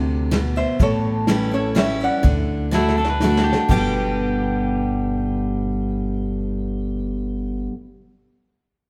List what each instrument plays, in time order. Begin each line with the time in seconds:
Already playing: upright bass D2, steel-string acoustic guitar C3 D3
0.31 steel-string acoustic guitar B2, snare, ride
0.56 resonator guitar played with a steel bar C5 E5, ride
0.79 upright bass A1, steel-string acoustic guitar A2, resonator guitar played with a steel bar A4 C#5, kick, ride
1.27 steel-string acoustic guitar E3 G3 C#4 E4, snare, ride
1.51 steel-string acoustic guitar C#4 E4, resonator guitar played with a steel bar A4 C#5
1.75 steel-string acoustic guitar E3 G3 C#4 E4, resonator guitar played with a steel bar E5, snare, ride
1.79 resonator guitar played with a steel bar C#5
2.00 resonator guitar played with a steel bar D5 F#5, ride
2.23 upright bass D2, steel-string acoustic guitar D3, kick, ride
2.71 steel-string acoustic guitar D3 A3 D4 F#4, clean electric guitar E4, snare
2.88 snare
2.97 steel-string acoustic guitar D4 F#4, clean electric guitar A4
3.04 snare
3.10 clean electric guitar B4
3.20 steel-string acoustic guitar D3 A3 D4 F#4, snare
3.37 snare
3.44 clean electric guitar G4
3.53 snare
3.68 upright bass G1, steel-string acoustic guitar G2 B2 D3 G3 B3 G4, clean electric guitar G4, resonator guitar played with a steel bar G5, kick, crash